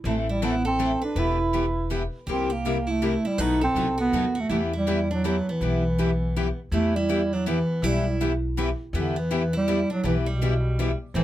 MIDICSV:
0, 0, Header, 1, 6, 480
1, 0, Start_track
1, 0, Key_signature, 1, "minor"
1, 0, Tempo, 370142
1, 67, Time_signature, 3, 2, 24, 8
1, 14573, End_track
2, 0, Start_track
2, 0, Title_t, "Steel-string acoustic guitar"
2, 0, Program_c, 0, 25
2, 65, Note_on_c, 0, 52, 55
2, 69, Note_on_c, 0, 57, 62
2, 71, Note_on_c, 0, 60, 67
2, 74, Note_on_c, 0, 64, 64
2, 74, Note_on_c, 0, 69, 66
2, 339, Note_off_c, 0, 52, 0
2, 341, Note_off_c, 0, 57, 0
2, 342, Note_off_c, 0, 60, 0
2, 344, Note_off_c, 0, 64, 0
2, 344, Note_off_c, 0, 69, 0
2, 547, Note_on_c, 0, 52, 78
2, 549, Note_on_c, 0, 60, 68
2, 552, Note_on_c, 0, 57, 74
2, 558, Note_on_c, 0, 64, 77
2, 562, Note_on_c, 0, 69, 84
2, 692, Note_off_c, 0, 52, 0
2, 693, Note_off_c, 0, 60, 0
2, 694, Note_off_c, 0, 57, 0
2, 697, Note_off_c, 0, 64, 0
2, 699, Note_off_c, 0, 69, 0
2, 1031, Note_on_c, 0, 57, 73
2, 1035, Note_on_c, 0, 52, 79
2, 1037, Note_on_c, 0, 64, 74
2, 1039, Note_on_c, 0, 60, 80
2, 1042, Note_on_c, 0, 69, 73
2, 1175, Note_off_c, 0, 57, 0
2, 1176, Note_off_c, 0, 52, 0
2, 1178, Note_off_c, 0, 60, 0
2, 1178, Note_off_c, 0, 64, 0
2, 1180, Note_off_c, 0, 69, 0
2, 1506, Note_on_c, 0, 52, 64
2, 1507, Note_on_c, 0, 64, 67
2, 1509, Note_on_c, 0, 59, 61
2, 1517, Note_on_c, 0, 71, 70
2, 1519, Note_on_c, 0, 67, 68
2, 1781, Note_off_c, 0, 52, 0
2, 1781, Note_off_c, 0, 64, 0
2, 1782, Note_off_c, 0, 59, 0
2, 1786, Note_off_c, 0, 71, 0
2, 1787, Note_off_c, 0, 67, 0
2, 1990, Note_on_c, 0, 52, 76
2, 1995, Note_on_c, 0, 59, 70
2, 1995, Note_on_c, 0, 64, 68
2, 1997, Note_on_c, 0, 71, 79
2, 2000, Note_on_c, 0, 67, 74
2, 2135, Note_off_c, 0, 52, 0
2, 2137, Note_off_c, 0, 59, 0
2, 2137, Note_off_c, 0, 64, 0
2, 2138, Note_off_c, 0, 71, 0
2, 2139, Note_off_c, 0, 67, 0
2, 2464, Note_on_c, 0, 52, 76
2, 2468, Note_on_c, 0, 59, 79
2, 2473, Note_on_c, 0, 64, 73
2, 2479, Note_on_c, 0, 67, 84
2, 2482, Note_on_c, 0, 71, 83
2, 2612, Note_off_c, 0, 52, 0
2, 2614, Note_off_c, 0, 59, 0
2, 2616, Note_off_c, 0, 64, 0
2, 2619, Note_off_c, 0, 67, 0
2, 2621, Note_off_c, 0, 71, 0
2, 2954, Note_on_c, 0, 48, 57
2, 2957, Note_on_c, 0, 55, 59
2, 2961, Note_on_c, 0, 58, 64
2, 2963, Note_on_c, 0, 64, 67
2, 2966, Note_on_c, 0, 67, 62
2, 3226, Note_off_c, 0, 48, 0
2, 3227, Note_off_c, 0, 55, 0
2, 3229, Note_off_c, 0, 58, 0
2, 3230, Note_off_c, 0, 64, 0
2, 3231, Note_off_c, 0, 67, 0
2, 3435, Note_on_c, 0, 55, 65
2, 3439, Note_on_c, 0, 48, 71
2, 3440, Note_on_c, 0, 58, 74
2, 3448, Note_on_c, 0, 64, 86
2, 3453, Note_on_c, 0, 67, 73
2, 3578, Note_off_c, 0, 55, 0
2, 3580, Note_off_c, 0, 48, 0
2, 3580, Note_off_c, 0, 58, 0
2, 3584, Note_off_c, 0, 64, 0
2, 3587, Note_off_c, 0, 67, 0
2, 3913, Note_on_c, 0, 48, 72
2, 3917, Note_on_c, 0, 55, 74
2, 3920, Note_on_c, 0, 58, 74
2, 3921, Note_on_c, 0, 64, 78
2, 3928, Note_on_c, 0, 67, 85
2, 4057, Note_off_c, 0, 48, 0
2, 4059, Note_off_c, 0, 55, 0
2, 4061, Note_off_c, 0, 58, 0
2, 4061, Note_off_c, 0, 64, 0
2, 4064, Note_off_c, 0, 67, 0
2, 4398, Note_on_c, 0, 47, 62
2, 4401, Note_on_c, 0, 51, 54
2, 4401, Note_on_c, 0, 54, 61
2, 4405, Note_on_c, 0, 59, 68
2, 4409, Note_on_c, 0, 63, 68
2, 4417, Note_on_c, 0, 69, 74
2, 4668, Note_off_c, 0, 47, 0
2, 4669, Note_off_c, 0, 51, 0
2, 4670, Note_off_c, 0, 54, 0
2, 4671, Note_off_c, 0, 59, 0
2, 4674, Note_off_c, 0, 63, 0
2, 4678, Note_off_c, 0, 69, 0
2, 4878, Note_on_c, 0, 47, 81
2, 4879, Note_on_c, 0, 51, 72
2, 4886, Note_on_c, 0, 59, 76
2, 4888, Note_on_c, 0, 63, 83
2, 4888, Note_on_c, 0, 69, 85
2, 4889, Note_on_c, 0, 54, 73
2, 5020, Note_off_c, 0, 47, 0
2, 5020, Note_off_c, 0, 51, 0
2, 5024, Note_off_c, 0, 59, 0
2, 5025, Note_off_c, 0, 54, 0
2, 5025, Note_off_c, 0, 63, 0
2, 5025, Note_off_c, 0, 69, 0
2, 5358, Note_on_c, 0, 47, 75
2, 5359, Note_on_c, 0, 51, 77
2, 5364, Note_on_c, 0, 54, 86
2, 5367, Note_on_c, 0, 63, 79
2, 5368, Note_on_c, 0, 59, 86
2, 5373, Note_on_c, 0, 69, 90
2, 5500, Note_off_c, 0, 47, 0
2, 5500, Note_off_c, 0, 51, 0
2, 5503, Note_off_c, 0, 54, 0
2, 5505, Note_off_c, 0, 59, 0
2, 5505, Note_off_c, 0, 63, 0
2, 5507, Note_off_c, 0, 69, 0
2, 5839, Note_on_c, 0, 52, 62
2, 5843, Note_on_c, 0, 64, 66
2, 5848, Note_on_c, 0, 59, 62
2, 5851, Note_on_c, 0, 67, 65
2, 5854, Note_on_c, 0, 71, 63
2, 6109, Note_off_c, 0, 52, 0
2, 6111, Note_off_c, 0, 64, 0
2, 6113, Note_off_c, 0, 59, 0
2, 6115, Note_off_c, 0, 67, 0
2, 6116, Note_off_c, 0, 71, 0
2, 6316, Note_on_c, 0, 64, 74
2, 6318, Note_on_c, 0, 52, 78
2, 6321, Note_on_c, 0, 67, 79
2, 6322, Note_on_c, 0, 59, 76
2, 6331, Note_on_c, 0, 71, 77
2, 6459, Note_off_c, 0, 64, 0
2, 6460, Note_off_c, 0, 52, 0
2, 6462, Note_off_c, 0, 59, 0
2, 6462, Note_off_c, 0, 67, 0
2, 6467, Note_off_c, 0, 71, 0
2, 6800, Note_on_c, 0, 52, 76
2, 6806, Note_on_c, 0, 59, 76
2, 6808, Note_on_c, 0, 64, 79
2, 6811, Note_on_c, 0, 67, 83
2, 6818, Note_on_c, 0, 71, 88
2, 6941, Note_off_c, 0, 52, 0
2, 6944, Note_off_c, 0, 59, 0
2, 6945, Note_off_c, 0, 64, 0
2, 6947, Note_off_c, 0, 67, 0
2, 6950, Note_off_c, 0, 71, 0
2, 7276, Note_on_c, 0, 52, 63
2, 7278, Note_on_c, 0, 64, 64
2, 7280, Note_on_c, 0, 59, 62
2, 7283, Note_on_c, 0, 67, 68
2, 7291, Note_on_c, 0, 71, 68
2, 7548, Note_off_c, 0, 52, 0
2, 7548, Note_off_c, 0, 64, 0
2, 7550, Note_off_c, 0, 59, 0
2, 7551, Note_off_c, 0, 67, 0
2, 7555, Note_off_c, 0, 71, 0
2, 7761, Note_on_c, 0, 52, 76
2, 7763, Note_on_c, 0, 59, 81
2, 7770, Note_on_c, 0, 64, 72
2, 7771, Note_on_c, 0, 67, 78
2, 7778, Note_on_c, 0, 71, 82
2, 7902, Note_off_c, 0, 52, 0
2, 7903, Note_off_c, 0, 59, 0
2, 7906, Note_off_c, 0, 64, 0
2, 7907, Note_off_c, 0, 67, 0
2, 7910, Note_off_c, 0, 71, 0
2, 8253, Note_on_c, 0, 59, 81
2, 8254, Note_on_c, 0, 52, 69
2, 8254, Note_on_c, 0, 64, 75
2, 8258, Note_on_c, 0, 67, 79
2, 8263, Note_on_c, 0, 71, 79
2, 8388, Note_off_c, 0, 52, 0
2, 8388, Note_off_c, 0, 59, 0
2, 8388, Note_off_c, 0, 64, 0
2, 8390, Note_off_c, 0, 67, 0
2, 8393, Note_off_c, 0, 71, 0
2, 8723, Note_on_c, 0, 52, 63
2, 8726, Note_on_c, 0, 59, 64
2, 8730, Note_on_c, 0, 71, 72
2, 8732, Note_on_c, 0, 64, 70
2, 8735, Note_on_c, 0, 67, 67
2, 8990, Note_off_c, 0, 52, 0
2, 8992, Note_off_c, 0, 59, 0
2, 8994, Note_off_c, 0, 71, 0
2, 8995, Note_off_c, 0, 64, 0
2, 8997, Note_off_c, 0, 67, 0
2, 9191, Note_on_c, 0, 52, 73
2, 9199, Note_on_c, 0, 64, 86
2, 9203, Note_on_c, 0, 67, 85
2, 9204, Note_on_c, 0, 59, 72
2, 9209, Note_on_c, 0, 71, 91
2, 9336, Note_off_c, 0, 52, 0
2, 9340, Note_off_c, 0, 64, 0
2, 9342, Note_off_c, 0, 67, 0
2, 9343, Note_off_c, 0, 59, 0
2, 9346, Note_off_c, 0, 71, 0
2, 9681, Note_on_c, 0, 52, 79
2, 9688, Note_on_c, 0, 59, 80
2, 9690, Note_on_c, 0, 64, 80
2, 9698, Note_on_c, 0, 67, 81
2, 9699, Note_on_c, 0, 71, 79
2, 9821, Note_off_c, 0, 52, 0
2, 9825, Note_off_c, 0, 59, 0
2, 9825, Note_off_c, 0, 64, 0
2, 9829, Note_off_c, 0, 67, 0
2, 9830, Note_off_c, 0, 71, 0
2, 10164, Note_on_c, 0, 52, 65
2, 10165, Note_on_c, 0, 59, 68
2, 10167, Note_on_c, 0, 64, 68
2, 10168, Note_on_c, 0, 67, 71
2, 10173, Note_on_c, 0, 71, 73
2, 10430, Note_off_c, 0, 52, 0
2, 10431, Note_off_c, 0, 59, 0
2, 10432, Note_off_c, 0, 64, 0
2, 10433, Note_off_c, 0, 67, 0
2, 10435, Note_off_c, 0, 71, 0
2, 10643, Note_on_c, 0, 52, 73
2, 10643, Note_on_c, 0, 59, 82
2, 10651, Note_on_c, 0, 64, 84
2, 10653, Note_on_c, 0, 67, 88
2, 10656, Note_on_c, 0, 71, 92
2, 10782, Note_off_c, 0, 52, 0
2, 10782, Note_off_c, 0, 59, 0
2, 10785, Note_off_c, 0, 64, 0
2, 10787, Note_off_c, 0, 67, 0
2, 10788, Note_off_c, 0, 71, 0
2, 11116, Note_on_c, 0, 52, 76
2, 11124, Note_on_c, 0, 59, 78
2, 11126, Note_on_c, 0, 64, 82
2, 11131, Note_on_c, 0, 67, 83
2, 11134, Note_on_c, 0, 71, 92
2, 11258, Note_off_c, 0, 52, 0
2, 11262, Note_off_c, 0, 59, 0
2, 11262, Note_off_c, 0, 64, 0
2, 11265, Note_off_c, 0, 67, 0
2, 11267, Note_off_c, 0, 71, 0
2, 11599, Note_on_c, 0, 52, 68
2, 11603, Note_on_c, 0, 59, 67
2, 11603, Note_on_c, 0, 64, 69
2, 11608, Note_on_c, 0, 71, 69
2, 11612, Note_on_c, 0, 67, 75
2, 11867, Note_off_c, 0, 52, 0
2, 11869, Note_off_c, 0, 59, 0
2, 11869, Note_off_c, 0, 64, 0
2, 11872, Note_off_c, 0, 71, 0
2, 11873, Note_off_c, 0, 67, 0
2, 12069, Note_on_c, 0, 52, 88
2, 12074, Note_on_c, 0, 59, 76
2, 12078, Note_on_c, 0, 64, 78
2, 12078, Note_on_c, 0, 67, 92
2, 12080, Note_on_c, 0, 71, 88
2, 12213, Note_off_c, 0, 52, 0
2, 12216, Note_off_c, 0, 59, 0
2, 12218, Note_off_c, 0, 64, 0
2, 12218, Note_off_c, 0, 67, 0
2, 12219, Note_off_c, 0, 71, 0
2, 12548, Note_on_c, 0, 52, 82
2, 12552, Note_on_c, 0, 59, 79
2, 12553, Note_on_c, 0, 67, 86
2, 12554, Note_on_c, 0, 64, 81
2, 12563, Note_on_c, 0, 71, 89
2, 12693, Note_off_c, 0, 52, 0
2, 12695, Note_off_c, 0, 59, 0
2, 12695, Note_off_c, 0, 67, 0
2, 12696, Note_off_c, 0, 64, 0
2, 12700, Note_off_c, 0, 71, 0
2, 13025, Note_on_c, 0, 52, 61
2, 13032, Note_on_c, 0, 59, 68
2, 13035, Note_on_c, 0, 67, 70
2, 13037, Note_on_c, 0, 64, 71
2, 13038, Note_on_c, 0, 71, 70
2, 13299, Note_off_c, 0, 52, 0
2, 13302, Note_off_c, 0, 59, 0
2, 13304, Note_off_c, 0, 67, 0
2, 13305, Note_off_c, 0, 64, 0
2, 13305, Note_off_c, 0, 71, 0
2, 13507, Note_on_c, 0, 52, 69
2, 13507, Note_on_c, 0, 59, 72
2, 13516, Note_on_c, 0, 64, 82
2, 13517, Note_on_c, 0, 67, 88
2, 13520, Note_on_c, 0, 71, 88
2, 13652, Note_off_c, 0, 52, 0
2, 13652, Note_off_c, 0, 59, 0
2, 13656, Note_off_c, 0, 64, 0
2, 13656, Note_off_c, 0, 67, 0
2, 13658, Note_off_c, 0, 71, 0
2, 13993, Note_on_c, 0, 52, 82
2, 13995, Note_on_c, 0, 59, 76
2, 14001, Note_on_c, 0, 64, 82
2, 14003, Note_on_c, 0, 67, 83
2, 14005, Note_on_c, 0, 71, 85
2, 14134, Note_off_c, 0, 52, 0
2, 14135, Note_off_c, 0, 59, 0
2, 14138, Note_off_c, 0, 64, 0
2, 14139, Note_off_c, 0, 67, 0
2, 14140, Note_off_c, 0, 71, 0
2, 14470, Note_on_c, 0, 52, 67
2, 14470, Note_on_c, 0, 57, 68
2, 14475, Note_on_c, 0, 64, 65
2, 14476, Note_on_c, 0, 60, 63
2, 14476, Note_on_c, 0, 69, 69
2, 14573, Note_off_c, 0, 52, 0
2, 14573, Note_off_c, 0, 57, 0
2, 14573, Note_off_c, 0, 60, 0
2, 14573, Note_off_c, 0, 64, 0
2, 14573, Note_off_c, 0, 69, 0
2, 14573, End_track
3, 0, Start_track
3, 0, Title_t, "Steel-string acoustic guitar"
3, 0, Program_c, 1, 25
3, 67, Note_on_c, 1, 64, 67
3, 147, Note_off_c, 1, 64, 0
3, 381, Note_on_c, 1, 64, 64
3, 536, Note_off_c, 1, 64, 0
3, 552, Note_on_c, 1, 64, 73
3, 836, Note_off_c, 1, 64, 0
3, 841, Note_on_c, 1, 69, 80
3, 1290, Note_off_c, 1, 69, 0
3, 1316, Note_on_c, 1, 71, 70
3, 1489, Note_off_c, 1, 71, 0
3, 1504, Note_on_c, 1, 71, 73
3, 2468, Note_off_c, 1, 71, 0
3, 2940, Note_on_c, 1, 67, 69
3, 3222, Note_off_c, 1, 67, 0
3, 3240, Note_on_c, 1, 67, 69
3, 3716, Note_off_c, 1, 67, 0
3, 3716, Note_on_c, 1, 64, 73
3, 4198, Note_off_c, 1, 64, 0
3, 4213, Note_on_c, 1, 64, 66
3, 4385, Note_off_c, 1, 64, 0
3, 4385, Note_on_c, 1, 71, 73
3, 4682, Note_off_c, 1, 71, 0
3, 4687, Note_on_c, 1, 69, 71
3, 5135, Note_off_c, 1, 69, 0
3, 5157, Note_on_c, 1, 66, 75
3, 5610, Note_off_c, 1, 66, 0
3, 5641, Note_on_c, 1, 66, 68
3, 5823, Note_off_c, 1, 66, 0
3, 5829, Note_on_c, 1, 64, 65
3, 5909, Note_off_c, 1, 64, 0
3, 6139, Note_on_c, 1, 64, 67
3, 6581, Note_off_c, 1, 64, 0
3, 6623, Note_on_c, 1, 62, 66
3, 6788, Note_off_c, 1, 62, 0
3, 6806, Note_on_c, 1, 59, 64
3, 7077, Note_off_c, 1, 59, 0
3, 7119, Note_on_c, 1, 59, 58
3, 8545, Note_off_c, 1, 59, 0
3, 8716, Note_on_c, 1, 64, 74
3, 8991, Note_off_c, 1, 64, 0
3, 9028, Note_on_c, 1, 64, 76
3, 9502, Note_off_c, 1, 64, 0
3, 9502, Note_on_c, 1, 62, 70
3, 9674, Note_off_c, 1, 62, 0
3, 9679, Note_on_c, 1, 59, 66
3, 10162, Note_off_c, 1, 59, 0
3, 10162, Note_on_c, 1, 64, 64
3, 10636, Note_off_c, 1, 64, 0
3, 11605, Note_on_c, 1, 59, 69
3, 11865, Note_off_c, 1, 59, 0
3, 11881, Note_on_c, 1, 59, 70
3, 12361, Note_on_c, 1, 64, 79
3, 12363, Note_off_c, 1, 59, 0
3, 12809, Note_off_c, 1, 64, 0
3, 12836, Note_on_c, 1, 62, 64
3, 13008, Note_off_c, 1, 62, 0
3, 13014, Note_on_c, 1, 59, 72
3, 13096, Note_off_c, 1, 59, 0
3, 13310, Note_on_c, 1, 55, 67
3, 14225, Note_off_c, 1, 55, 0
3, 14459, Note_on_c, 1, 60, 76
3, 14540, Note_off_c, 1, 60, 0
3, 14573, End_track
4, 0, Start_track
4, 0, Title_t, "Steel-string acoustic guitar"
4, 0, Program_c, 2, 25
4, 4409, Note_on_c, 2, 57, 62
4, 4414, Note_on_c, 2, 66, 67
4, 4673, Note_off_c, 2, 57, 0
4, 4676, Note_off_c, 2, 66, 0
4, 4876, Note_on_c, 2, 57, 78
4, 4882, Note_on_c, 2, 66, 83
4, 5019, Note_off_c, 2, 57, 0
4, 5022, Note_off_c, 2, 66, 0
4, 5366, Note_on_c, 2, 57, 75
4, 5369, Note_on_c, 2, 66, 80
4, 5504, Note_off_c, 2, 57, 0
4, 5505, Note_off_c, 2, 66, 0
4, 14573, End_track
5, 0, Start_track
5, 0, Title_t, "Bass clarinet"
5, 0, Program_c, 3, 71
5, 97, Note_on_c, 3, 57, 77
5, 224, Note_off_c, 3, 57, 0
5, 372, Note_on_c, 3, 55, 77
5, 570, Note_on_c, 3, 59, 85
5, 590, Note_off_c, 3, 55, 0
5, 857, Note_off_c, 3, 59, 0
5, 870, Note_on_c, 3, 60, 93
5, 1306, Note_off_c, 3, 60, 0
5, 1349, Note_on_c, 3, 62, 86
5, 1538, Note_on_c, 3, 64, 90
5, 1557, Note_off_c, 3, 62, 0
5, 2485, Note_off_c, 3, 64, 0
5, 2967, Note_on_c, 3, 60, 82
5, 3269, Note_on_c, 3, 58, 83
5, 3289, Note_off_c, 3, 60, 0
5, 3768, Note_on_c, 3, 57, 94
5, 3788, Note_off_c, 3, 58, 0
5, 4242, Note_on_c, 3, 55, 82
5, 4261, Note_off_c, 3, 57, 0
5, 4422, Note_on_c, 3, 63, 89
5, 4441, Note_off_c, 3, 55, 0
5, 4704, Note_off_c, 3, 63, 0
5, 4715, Note_on_c, 3, 60, 91
5, 5150, Note_off_c, 3, 60, 0
5, 5191, Note_on_c, 3, 59, 97
5, 5704, Note_on_c, 3, 57, 84
5, 5724, Note_off_c, 3, 59, 0
5, 5848, Note_off_c, 3, 57, 0
5, 5856, Note_on_c, 3, 57, 82
5, 5985, Note_off_c, 3, 57, 0
5, 6183, Note_on_c, 3, 55, 86
5, 6605, Note_off_c, 3, 55, 0
5, 6659, Note_on_c, 3, 54, 80
5, 6807, Note_off_c, 3, 54, 0
5, 6831, Note_on_c, 3, 54, 75
5, 7143, Note_on_c, 3, 52, 80
5, 7162, Note_off_c, 3, 54, 0
5, 8557, Note_off_c, 3, 52, 0
5, 8740, Note_on_c, 3, 57, 94
5, 9017, Note_on_c, 3, 55, 93
5, 9036, Note_off_c, 3, 57, 0
5, 9516, Note_on_c, 3, 54, 86
5, 9535, Note_off_c, 3, 55, 0
5, 9686, Note_off_c, 3, 54, 0
5, 9709, Note_on_c, 3, 52, 78
5, 10193, Note_on_c, 3, 55, 76
5, 10213, Note_off_c, 3, 52, 0
5, 10652, Note_off_c, 3, 55, 0
5, 11619, Note_on_c, 3, 50, 81
5, 11912, Note_on_c, 3, 52, 83
5, 11931, Note_off_c, 3, 50, 0
5, 12379, Note_off_c, 3, 52, 0
5, 12412, Note_on_c, 3, 55, 96
5, 12836, Note_off_c, 3, 55, 0
5, 12874, Note_on_c, 3, 54, 79
5, 13031, Note_off_c, 3, 54, 0
5, 13051, Note_on_c, 3, 52, 78
5, 13179, Note_off_c, 3, 52, 0
5, 13344, Note_on_c, 3, 47, 89
5, 14241, Note_off_c, 3, 47, 0
5, 14475, Note_on_c, 3, 52, 86
5, 14573, Note_off_c, 3, 52, 0
5, 14573, End_track
6, 0, Start_track
6, 0, Title_t, "Upright bass"
6, 0, Program_c, 4, 32
6, 51, Note_on_c, 4, 33, 78
6, 1211, Note_off_c, 4, 33, 0
6, 1496, Note_on_c, 4, 28, 75
6, 2655, Note_off_c, 4, 28, 0
6, 2940, Note_on_c, 4, 36, 75
6, 4097, Note_off_c, 4, 36, 0
6, 4386, Note_on_c, 4, 35, 79
6, 4773, Note_off_c, 4, 35, 0
6, 4859, Note_on_c, 4, 36, 72
6, 5273, Note_off_c, 4, 36, 0
6, 5344, Note_on_c, 4, 39, 73
6, 5756, Note_off_c, 4, 39, 0
6, 5827, Note_on_c, 4, 40, 81
6, 6982, Note_off_c, 4, 40, 0
6, 7271, Note_on_c, 4, 35, 68
6, 8424, Note_off_c, 4, 35, 0
6, 8709, Note_on_c, 4, 40, 83
6, 9862, Note_off_c, 4, 40, 0
6, 10143, Note_on_c, 4, 35, 77
6, 11297, Note_off_c, 4, 35, 0
6, 11581, Note_on_c, 4, 40, 82
6, 12735, Note_off_c, 4, 40, 0
6, 13013, Note_on_c, 4, 35, 72
6, 14170, Note_off_c, 4, 35, 0
6, 14448, Note_on_c, 4, 33, 78
6, 14573, Note_off_c, 4, 33, 0
6, 14573, End_track
0, 0, End_of_file